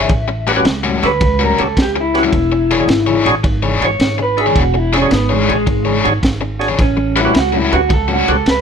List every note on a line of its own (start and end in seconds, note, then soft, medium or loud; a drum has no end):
0.00 0.10 E3 medium
0.00 0.10 D4 medium
0.00 0.09 G#4 medium
0.00 0.45 E5 medium
0.09 0.60 A1 medium
0.09 kick loud
0.09 ride medium
0.28 muted overdriven electric guitar stroke medium
0.47 0.59 A2 medium
0.47 0.59 G3 medium
0.47 0.59 C#4 medium
0.47 0.59 F#4 loud
0.47 0.52 G4 medium
0.47 0.52 B4 loud
0.47 ride medium
0.56 0.66 C#4 medium
0.56 0.65 F#4 medium
0.56 0.66 G4 medium
0.56 0.65 B4 medium
0.65 0.99 C#2 medium
0.65 muted overdriven electric guitar stroke soft
0.65 snare loud
0.65 ride medium
0.84 1.06 A2 medium
0.84 1.06 G3 medium
0.84 1.06 C#4 medium
0.84 1.06 F#4 medium
1.03 1.19 D2 medium
1.03 1.12 C#4 medium
1.03 1.12 F#4 medium
1.03 1.12 G4 medium
1.03 1.12 A4 medium
1.03 1.40 B4 loud
1.03 snare soft
1.03 ride medium
1.21 1.55 C#2 medium
1.21 muted overdriven electric guitar stroke medium
1.21 kick loud
1.21 ride medium
1.39 1.62 A2 medium
1.39 1.62 G3 medium
1.39 1.62 C#4 medium
1.39 1.61 F#4 medium
1.44 1.62 A#4 medium
1.58 1.75 C#2 medium
1.58 1.68 C#4 medium
1.58 1.68 F#4 medium
1.58 1.68 G4 medium
1.58 1.68 A4 medium
1.58 1.78 A4 medium
1.58 ride medium
1.77 2.27 C#2 medium
1.77 kick medium
1.77 snare loud
1.77 ride medium
1.82 1.97 G4 medium
1.96 muted overdriven electric guitar stroke medium
2.00 2.16 E4 medium
2.14 2.23 C#4 medium
2.14 3.24 E4 medium
2.14 2.24 F#4 medium
2.14 2.24 G4 medium
2.14 2.24 B4 medium
2.14 snare soft
2.14 ride medium
2.24 2.33 A2 medium
2.24 2.33 G3 medium
2.24 2.33 C#4 medium
2.24 2.33 F#4 medium
2.33 2.82 E1 medium
2.33 kick loud
2.33 ride medium
2.52 muted overdriven electric guitar stroke medium
2.70 2.82 E3 medium
2.70 2.83 D4 medium
2.70 2.75 G#4 medium
2.70 2.83 G#4 medium
2.70 2.75 C#5 medium
2.70 2.83 C#5 medium
2.70 ride medium
2.79 2.88 D4 medium
2.79 2.88 F#4 medium
2.79 2.89 G#4 medium
2.79 2.89 C#5 medium
2.88 3.22 G#1 medium
2.88 muted overdriven electric guitar stroke soft
2.88 snare loud
2.88 ride medium
3.07 3.29 E3 medium
3.07 3.29 D4 medium
3.07 3.29 G#4 medium
3.07 3.29 C#5 medium
3.25 3.42 A1 medium
3.25 3.35 D4 medium
3.25 3.35 F#4 medium
3.25 3.35 G#4 medium
3.25 3.35 C#5 loud
3.25 snare soft
3.25 ride medium
3.44 3.78 G#1 loud
3.44 muted overdriven electric guitar stroke medium
3.44 kick loud
3.44 ride medium
3.63 3.85 E3 medium
3.63 3.85 D4 medium
3.63 3.85 G#4 medium
3.63 3.84 C#5 medium
3.81 3.98 G#1 medium
3.81 3.91 D4 medium
3.81 3.91 F#4 medium
3.81 3.91 G#4 medium
3.81 3.91 C#5 medium
3.81 4.19 C#5 medium
3.81 ride medium
4.00 4.50 G#1 medium
4.00 snare loud
4.00 ride medium
4.19 4.38 B4 medium
4.19 muted overdriven electric guitar stroke soft
4.37 4.46 D4 medium
4.37 4.46 F#4 medium
4.37 4.47 G#4 medium
4.37 4.59 G#4 medium
4.37 4.47 E5 medium
4.37 ride medium
4.46 4.62 E3 medium
4.46 4.61 D4 medium
4.46 4.61 G#4 medium
4.46 4.61 C#5 medium
4.56 5.05 E1 loud
4.56 4.77 F#4 medium
4.56 kick loud
4.56 ride medium
4.74 4.94 E4 medium
4.74 muted overdriven electric guitar stroke soft
4.93 5.05 E3 medium
4.93 5.12 C#4 loud
4.93 5.05 D4 medium
4.93 4.98 G#4 medium
4.93 5.05 G#4 medium
4.93 5.05 C#5 loud
4.93 4.98 E5 medium
4.93 snare soft
4.93 ride medium
5.02 5.11 D4 medium
5.02 5.11 F#4 medium
5.02 5.11 G#4 medium
5.02 5.11 C#5 medium
5.11 5.45 G#1 medium
5.11 5.33 B3 medium
5.11 muted overdriven electric guitar stroke soft
5.11 snare loud
5.11 ride medium
5.30 5.52 E3 medium
5.30 5.50 G#3 medium
5.30 5.52 D4 medium
5.30 5.52 G#4 medium
5.30 5.51 C#5 medium
5.48 5.65 A1 medium
5.48 6.04 G#3 medium
5.48 5.58 D4 medium
5.48 5.58 F#4 medium
5.48 5.58 G#4 medium
5.48 5.58 C#5 medium
5.48 ride medium
5.67 6.01 G#1 medium
5.67 muted overdriven electric guitar stroke soft
5.67 kick loud
5.67 ride medium
5.85 6.08 E3 medium
5.85 6.08 D4 medium
5.85 6.08 G#4 medium
5.85 6.07 C#5 medium
6.04 6.21 G#1 medium
6.04 6.14 D4 medium
6.04 6.14 F#4 medium
6.04 6.13 G#4 medium
6.04 6.14 C#5 medium
6.04 ride medium
6.23 6.73 G#1 medium
6.23 kick medium
6.23 snare loud
6.23 ride medium
6.41 muted overdriven electric guitar stroke medium
6.59 6.69 D4 medium
6.59 6.69 F#4 medium
6.59 6.69 G#4 medium
6.59 6.69 C#5 medium
6.59 snare soft
6.59 ride medium
6.69 6.79 E3 medium
6.69 6.79 D4 medium
6.69 6.78 G#4 medium
6.69 6.78 C#5 medium
6.79 7.29 A1 loud
6.79 7.16 C#4 loud
6.79 kick loud
6.79 snare soft
6.79 ride medium
6.97 muted overdriven electric guitar stroke soft
7.16 7.28 A2 medium
7.16 7.28 G3 medium
7.16 7.28 C#4 medium
7.16 7.36 E4 medium
7.16 7.28 F#4 medium
7.16 7.21 G4 medium
7.16 7.21 B4 medium
7.16 ride medium
7.25 7.34 C#4 medium
7.25 7.34 F#4 medium
7.25 7.34 G4 medium
7.25 7.34 B4 medium
7.34 7.68 C#2 medium
7.34 muted overdriven electric guitar stroke soft
7.34 snare loud
7.34 ride medium
7.39 7.57 F#4 medium
7.53 7.75 A2 medium
7.53 7.75 G3 medium
7.53 7.75 C#4 medium
7.53 7.74 F#4 medium
7.57 7.73 E4 medium
7.72 7.88 D2 medium
7.72 7.81 C#4 medium
7.72 7.81 F#4 medium
7.72 7.91 F#4 loud
7.72 7.81 G4 medium
7.72 7.81 B4 medium
7.72 ride medium
7.90 8.24 C#2 medium
7.90 muted overdriven electric guitar stroke soft
7.90 kick loud
7.90 ride medium
7.94 8.10 A4 medium
8.08 8.31 A2 medium
8.08 8.31 G3 medium
8.08 8.30 C#4 medium
8.08 8.30 F#4 medium
8.13 8.29 F#4 medium
8.28 8.44 C#2 medium
8.28 8.37 C#4 medium
8.28 8.37 F#4 medium
8.28 8.37 G4 medium
8.28 8.48 A4 medium
8.28 8.37 B4 medium
8.28 ride medium
8.46 8.61 C#2 medium
8.46 8.61 B4 medium
8.46 snare loud
8.46 ride medium